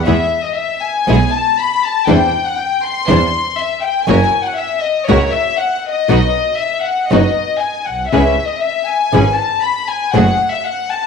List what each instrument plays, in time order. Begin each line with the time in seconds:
0.05 double bass E2, nylon-string guitar B2 E3 G#3 B3 E4, string section B3 E4 G#4, violin section E5
0.44 violin section D#5
0.56 violin section E5
0.82 violin section G#5
1.08 double bass B1, nylon-string guitar B2 E3 G#3 B3 E4, string section B3 E4 G#4
1.33 violin section A5
1.59 violin section B5
1.83 violin section A5
2.07 double bass E2, nylon-string guitar C3 E3 G3 D4 E4, string section D4 E4 C5, violin section G5
2.46 violin section F#5
2.58 violin section G5
2.84 violin section C6
3.07 double bass E2, nylon-string guitar C3 E3 G3 D4 E4, string section D4 E4 C5
3.58 violin section E5
3.82 violin section G5
4.06 double bass F#1, nylon-string guitar C#3 E3 A#3 C#4 F#4, string section E4 F#4 A#4, violin section G#5
4.45 violin section F#5
4.57 violin section E5
4.81 violin section D#5
5.06 double bass C#2, nylon-string guitar C#3 E3 A#3 C#4 F#4, string section E4 F#4 A#4, violin section C#5
5.31 violin section E5
5.58 violin section F#5
5.90 violin section D#5
6.08 double bass B1, nylon-string guitar B2 F#3 B3 D#4 F#4, string section D#4 F#4 B4
6.58 violin section E5
6.83 violin section F#5
7.10 double bass F#1, nylon-string guitar B2 F#3 B3 D#4 F#4, string section D#4 F#4 B4, violin section D#5
7.61 violin section G#5
7.85 double bass B1, violin section F#5
8.10 double bass C#2, nylon-string guitar C#3 E3 B3 C#4 G#4, string section C#4 E4 B4, violin section E5
8.47 violin section D#5
8.61 violin section E5
8.86 violin section G#5
9.13 double bass G#1, nylon-string guitar C#3 E3 B3 C#4 G#4, string section C#4 E4 B4
9.37 violin section A5
9.62 violin section B5
9.88 violin section G#5
10.14 double bass F#1, nylon-string guitar C#3 F#3 A3 C#4 G#4, string section A3 F#4 G#4, violin section F#5
10.52 violin section E5
10.64 violin section F#5
10.90 violin section A5